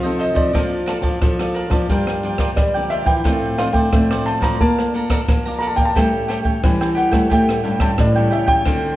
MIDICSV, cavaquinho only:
0, 0, Header, 1, 2, 480
1, 0, Start_track
1, 0, Tempo, 675676
1, 394, Time_signature, 4, 2, 24, 8
1, 6365, End_track
2, 0, Start_track
2, 0, Title_t, "Cavaquinho"
2, 0, Program_c, 0, 24
2, 22, Note_on_c, 0, 75, 47
2, 30, Note_on_c, 0, 72, 46
2, 35, Note_on_c, 0, 69, 38
2, 128, Note_off_c, 0, 69, 0
2, 129, Note_on_c, 0, 65, 62
2, 131, Note_off_c, 0, 72, 0
2, 137, Note_on_c, 0, 69, 66
2, 138, Note_off_c, 0, 75, 0
2, 139, Note_on_c, 0, 72, 67
2, 146, Note_on_c, 0, 75, 74
2, 242, Note_off_c, 0, 75, 0
2, 247, Note_off_c, 0, 72, 0
2, 250, Note_on_c, 0, 75, 47
2, 252, Note_off_c, 0, 65, 0
2, 256, Note_off_c, 0, 69, 0
2, 256, Note_on_c, 0, 72, 43
2, 264, Note_on_c, 0, 69, 38
2, 373, Note_off_c, 0, 75, 0
2, 376, Note_off_c, 0, 72, 0
2, 377, Note_on_c, 0, 70, 70
2, 379, Note_off_c, 0, 69, 0
2, 381, Note_on_c, 0, 74, 63
2, 386, Note_on_c, 0, 77, 68
2, 390, Note_on_c, 0, 81, 76
2, 603, Note_off_c, 0, 70, 0
2, 609, Note_off_c, 0, 74, 0
2, 612, Note_off_c, 0, 81, 0
2, 612, Note_on_c, 0, 70, 67
2, 613, Note_off_c, 0, 77, 0
2, 618, Note_on_c, 0, 74, 69
2, 621, Note_on_c, 0, 81, 81
2, 622, Note_on_c, 0, 77, 70
2, 687, Note_off_c, 0, 70, 0
2, 690, Note_off_c, 0, 74, 0
2, 692, Note_off_c, 0, 77, 0
2, 692, Note_off_c, 0, 81, 0
2, 727, Note_on_c, 0, 81, 42
2, 733, Note_on_c, 0, 77, 38
2, 739, Note_on_c, 0, 74, 36
2, 971, Note_off_c, 0, 81, 0
2, 974, Note_off_c, 0, 77, 0
2, 977, Note_off_c, 0, 74, 0
2, 990, Note_on_c, 0, 81, 48
2, 998, Note_on_c, 0, 77, 41
2, 1002, Note_on_c, 0, 74, 40
2, 1094, Note_off_c, 0, 74, 0
2, 1096, Note_on_c, 0, 70, 56
2, 1101, Note_off_c, 0, 77, 0
2, 1102, Note_on_c, 0, 74, 63
2, 1103, Note_off_c, 0, 81, 0
2, 1109, Note_on_c, 0, 77, 73
2, 1112, Note_on_c, 0, 81, 72
2, 1205, Note_off_c, 0, 81, 0
2, 1209, Note_off_c, 0, 77, 0
2, 1213, Note_on_c, 0, 81, 50
2, 1215, Note_off_c, 0, 70, 0
2, 1218, Note_on_c, 0, 77, 42
2, 1219, Note_off_c, 0, 74, 0
2, 1228, Note_on_c, 0, 74, 40
2, 1334, Note_off_c, 0, 81, 0
2, 1336, Note_off_c, 0, 77, 0
2, 1342, Note_off_c, 0, 74, 0
2, 1346, Note_on_c, 0, 65, 61
2, 1353, Note_on_c, 0, 70, 74
2, 1360, Note_on_c, 0, 74, 67
2, 1363, Note_on_c, 0, 79, 73
2, 1577, Note_off_c, 0, 65, 0
2, 1584, Note_off_c, 0, 70, 0
2, 1586, Note_on_c, 0, 65, 48
2, 1587, Note_off_c, 0, 74, 0
2, 1589, Note_off_c, 0, 79, 0
2, 1596, Note_on_c, 0, 70, 52
2, 1597, Note_on_c, 0, 74, 57
2, 1604, Note_on_c, 0, 79, 55
2, 1689, Note_off_c, 0, 65, 0
2, 1694, Note_off_c, 0, 70, 0
2, 1697, Note_off_c, 0, 79, 0
2, 1698, Note_on_c, 0, 65, 58
2, 1699, Note_off_c, 0, 74, 0
2, 1702, Note_on_c, 0, 70, 65
2, 1705, Note_on_c, 0, 79, 71
2, 1707, Note_on_c, 0, 74, 78
2, 1770, Note_off_c, 0, 65, 0
2, 1772, Note_off_c, 0, 70, 0
2, 1774, Note_off_c, 0, 79, 0
2, 1775, Note_off_c, 0, 74, 0
2, 1947, Note_on_c, 0, 79, 52
2, 1958, Note_on_c, 0, 74, 46
2, 1966, Note_on_c, 0, 70, 40
2, 2055, Note_off_c, 0, 70, 0
2, 2058, Note_on_c, 0, 65, 63
2, 2061, Note_off_c, 0, 79, 0
2, 2063, Note_off_c, 0, 74, 0
2, 2063, Note_on_c, 0, 70, 76
2, 2072, Note_on_c, 0, 74, 70
2, 2076, Note_on_c, 0, 79, 74
2, 2165, Note_off_c, 0, 79, 0
2, 2172, Note_off_c, 0, 74, 0
2, 2174, Note_on_c, 0, 79, 49
2, 2176, Note_off_c, 0, 65, 0
2, 2179, Note_off_c, 0, 70, 0
2, 2180, Note_on_c, 0, 74, 43
2, 2190, Note_on_c, 0, 70, 35
2, 2295, Note_off_c, 0, 79, 0
2, 2298, Note_off_c, 0, 74, 0
2, 2303, Note_off_c, 0, 70, 0
2, 2303, Note_on_c, 0, 65, 71
2, 2310, Note_on_c, 0, 69, 74
2, 2316, Note_on_c, 0, 72, 76
2, 2318, Note_on_c, 0, 74, 67
2, 2534, Note_off_c, 0, 65, 0
2, 2538, Note_off_c, 0, 69, 0
2, 2540, Note_off_c, 0, 72, 0
2, 2542, Note_off_c, 0, 74, 0
2, 2543, Note_on_c, 0, 65, 67
2, 2547, Note_on_c, 0, 69, 65
2, 2549, Note_on_c, 0, 72, 67
2, 2550, Note_on_c, 0, 74, 71
2, 2613, Note_off_c, 0, 65, 0
2, 2615, Note_off_c, 0, 69, 0
2, 2616, Note_off_c, 0, 72, 0
2, 2617, Note_off_c, 0, 74, 0
2, 2665, Note_on_c, 0, 74, 44
2, 2672, Note_on_c, 0, 72, 41
2, 2679, Note_on_c, 0, 69, 35
2, 2900, Note_off_c, 0, 74, 0
2, 2904, Note_off_c, 0, 72, 0
2, 2907, Note_off_c, 0, 69, 0
2, 2918, Note_on_c, 0, 74, 51
2, 2927, Note_on_c, 0, 72, 43
2, 2931, Note_on_c, 0, 69, 45
2, 3019, Note_off_c, 0, 69, 0
2, 3022, Note_off_c, 0, 72, 0
2, 3023, Note_on_c, 0, 65, 68
2, 3027, Note_off_c, 0, 74, 0
2, 3028, Note_on_c, 0, 69, 62
2, 3031, Note_on_c, 0, 72, 62
2, 3035, Note_on_c, 0, 74, 63
2, 3138, Note_off_c, 0, 74, 0
2, 3139, Note_off_c, 0, 65, 0
2, 3142, Note_off_c, 0, 69, 0
2, 3143, Note_off_c, 0, 72, 0
2, 3147, Note_on_c, 0, 74, 47
2, 3155, Note_on_c, 0, 72, 43
2, 3161, Note_on_c, 0, 69, 37
2, 3261, Note_off_c, 0, 74, 0
2, 3265, Note_off_c, 0, 72, 0
2, 3268, Note_off_c, 0, 69, 0
2, 3276, Note_on_c, 0, 74, 72
2, 3282, Note_on_c, 0, 77, 75
2, 3506, Note_off_c, 0, 74, 0
2, 3509, Note_off_c, 0, 77, 0
2, 3509, Note_on_c, 0, 69, 47
2, 3515, Note_on_c, 0, 74, 45
2, 3520, Note_on_c, 0, 77, 51
2, 3523, Note_on_c, 0, 82, 61
2, 3612, Note_off_c, 0, 69, 0
2, 3612, Note_off_c, 0, 74, 0
2, 3616, Note_off_c, 0, 82, 0
2, 3617, Note_off_c, 0, 77, 0
2, 3620, Note_on_c, 0, 69, 73
2, 3620, Note_on_c, 0, 74, 67
2, 3625, Note_on_c, 0, 82, 87
2, 3626, Note_on_c, 0, 77, 72
2, 3692, Note_off_c, 0, 69, 0
2, 3692, Note_off_c, 0, 74, 0
2, 3694, Note_off_c, 0, 77, 0
2, 3694, Note_off_c, 0, 82, 0
2, 3875, Note_on_c, 0, 82, 50
2, 3884, Note_on_c, 0, 77, 44
2, 3892, Note_on_c, 0, 74, 41
2, 3981, Note_off_c, 0, 74, 0
2, 3981, Note_on_c, 0, 69, 72
2, 3985, Note_off_c, 0, 82, 0
2, 3987, Note_off_c, 0, 77, 0
2, 3989, Note_on_c, 0, 74, 67
2, 3996, Note_on_c, 0, 77, 62
2, 3999, Note_on_c, 0, 82, 61
2, 4090, Note_off_c, 0, 82, 0
2, 4099, Note_off_c, 0, 69, 0
2, 4099, Note_off_c, 0, 77, 0
2, 4099, Note_on_c, 0, 82, 53
2, 4103, Note_off_c, 0, 74, 0
2, 4107, Note_on_c, 0, 77, 46
2, 4114, Note_on_c, 0, 74, 39
2, 4217, Note_off_c, 0, 82, 0
2, 4222, Note_off_c, 0, 77, 0
2, 4225, Note_off_c, 0, 74, 0
2, 4230, Note_on_c, 0, 67, 71
2, 4236, Note_on_c, 0, 69, 75
2, 4240, Note_on_c, 0, 73, 64
2, 4247, Note_on_c, 0, 79, 81
2, 4453, Note_off_c, 0, 67, 0
2, 4458, Note_off_c, 0, 69, 0
2, 4461, Note_off_c, 0, 73, 0
2, 4462, Note_on_c, 0, 67, 70
2, 4464, Note_off_c, 0, 79, 0
2, 4466, Note_on_c, 0, 69, 72
2, 4470, Note_on_c, 0, 73, 66
2, 4472, Note_on_c, 0, 79, 69
2, 4533, Note_off_c, 0, 67, 0
2, 4535, Note_off_c, 0, 69, 0
2, 4537, Note_off_c, 0, 73, 0
2, 4538, Note_off_c, 0, 79, 0
2, 4584, Note_on_c, 0, 79, 46
2, 4589, Note_on_c, 0, 73, 38
2, 4593, Note_on_c, 0, 69, 34
2, 4820, Note_off_c, 0, 79, 0
2, 4823, Note_off_c, 0, 73, 0
2, 4825, Note_off_c, 0, 69, 0
2, 4836, Note_on_c, 0, 79, 51
2, 4842, Note_on_c, 0, 73, 50
2, 4849, Note_on_c, 0, 69, 39
2, 4935, Note_on_c, 0, 67, 60
2, 4936, Note_off_c, 0, 69, 0
2, 4941, Note_off_c, 0, 73, 0
2, 4944, Note_on_c, 0, 69, 66
2, 4946, Note_off_c, 0, 79, 0
2, 4950, Note_on_c, 0, 73, 66
2, 4954, Note_on_c, 0, 79, 71
2, 5045, Note_off_c, 0, 79, 0
2, 5054, Note_on_c, 0, 79, 45
2, 5055, Note_off_c, 0, 73, 0
2, 5056, Note_off_c, 0, 67, 0
2, 5056, Note_off_c, 0, 69, 0
2, 5063, Note_on_c, 0, 73, 44
2, 5065, Note_on_c, 0, 69, 38
2, 5175, Note_off_c, 0, 79, 0
2, 5180, Note_off_c, 0, 73, 0
2, 5181, Note_off_c, 0, 69, 0
2, 5184, Note_on_c, 0, 67, 64
2, 5191, Note_on_c, 0, 69, 65
2, 5193, Note_on_c, 0, 73, 66
2, 5199, Note_on_c, 0, 79, 73
2, 5415, Note_off_c, 0, 67, 0
2, 5421, Note_off_c, 0, 69, 0
2, 5423, Note_off_c, 0, 73, 0
2, 5424, Note_on_c, 0, 67, 48
2, 5428, Note_off_c, 0, 79, 0
2, 5429, Note_on_c, 0, 69, 48
2, 5432, Note_on_c, 0, 73, 51
2, 5437, Note_on_c, 0, 79, 49
2, 5531, Note_off_c, 0, 67, 0
2, 5531, Note_off_c, 0, 69, 0
2, 5537, Note_off_c, 0, 73, 0
2, 5540, Note_on_c, 0, 67, 65
2, 5540, Note_on_c, 0, 69, 72
2, 5541, Note_off_c, 0, 79, 0
2, 5545, Note_on_c, 0, 73, 74
2, 5549, Note_on_c, 0, 79, 78
2, 5612, Note_off_c, 0, 67, 0
2, 5612, Note_off_c, 0, 69, 0
2, 5615, Note_off_c, 0, 73, 0
2, 5617, Note_off_c, 0, 79, 0
2, 5793, Note_on_c, 0, 79, 51
2, 5804, Note_on_c, 0, 73, 44
2, 5807, Note_on_c, 0, 69, 38
2, 5900, Note_off_c, 0, 69, 0
2, 5900, Note_on_c, 0, 67, 61
2, 5906, Note_off_c, 0, 79, 0
2, 5907, Note_off_c, 0, 73, 0
2, 5908, Note_on_c, 0, 69, 61
2, 5915, Note_on_c, 0, 73, 60
2, 5919, Note_on_c, 0, 79, 70
2, 6004, Note_off_c, 0, 79, 0
2, 6012, Note_on_c, 0, 79, 43
2, 6014, Note_off_c, 0, 73, 0
2, 6019, Note_off_c, 0, 67, 0
2, 6021, Note_off_c, 0, 69, 0
2, 6023, Note_on_c, 0, 73, 44
2, 6030, Note_on_c, 0, 69, 43
2, 6135, Note_off_c, 0, 79, 0
2, 6140, Note_off_c, 0, 73, 0
2, 6144, Note_off_c, 0, 69, 0
2, 6147, Note_on_c, 0, 62, 63
2, 6151, Note_on_c, 0, 69, 69
2, 6159, Note_on_c, 0, 72, 65
2, 6164, Note_on_c, 0, 77, 73
2, 6365, Note_off_c, 0, 62, 0
2, 6365, Note_off_c, 0, 69, 0
2, 6365, Note_off_c, 0, 72, 0
2, 6365, Note_off_c, 0, 77, 0
2, 6365, End_track
0, 0, End_of_file